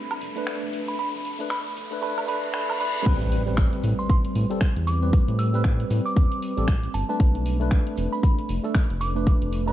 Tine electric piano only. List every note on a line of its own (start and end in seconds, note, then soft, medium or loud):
0.35 0.97 A3 medium
0.35 0.97 D4 medium
0.35 0.98 B4 medium
1.39 1.49 A3 medium
1.39 1.49 D4 medium
1.39 1.50 B4 medium
1.91 2.00 A3 medium
1.91 2.01 D4 medium
1.91 2.01 B4 loud
2.01 2.26 A3 medium
2.01 2.27 D4 medium
2.01 2.27 B4 loud
2.27 2.52 A3 medium
2.27 2.53 D4 medium
2.27 2.53 B4 loud
2.53 2.78 A3 medium
2.53 2.78 D4 medium
2.53 2.79 B4 medium
2.79 3.04 A3 medium
2.79 3.04 D4 medium
2.79 3.05 B4 loud
3.05 3.41 G3 loud
3.05 3.41 C4 medium
3.05 3.41 B4 loud
3.46 4.46 G3 medium
3.46 4.47 C4 medium
3.46 4.47 B4 medium
4.50 4.66 G3 medium
4.50 4.66 C4 medium
4.50 4.66 A4 loud
5.02 5.50 G3 medium
5.02 5.50 C4 medium
5.02 5.51 B4 medium
5.53 6.53 G3 medium
5.53 6.54 C4 medium
5.53 6.54 B4 medium
6.57 6.73 G3 medium
6.57 6.73 C4 medium
6.57 6.73 A4 loud
7.08 7.57 A3 medium
7.08 7.57 D4 medium
7.08 7.57 B4 medium
7.60 8.60 A3 medium
7.60 8.61 D4 medium
7.60 8.61 B4 medium
8.64 8.80 A3 medium
8.64 8.80 D4 medium
8.64 8.80 A4 loud
9.15 9.64 A3 medium
9.15 9.64 D4 medium
9.15 9.64 B4 medium
9.66 9.72 A3 medium
9.66 9.72 D4 medium
9.66 9.72 B4 loud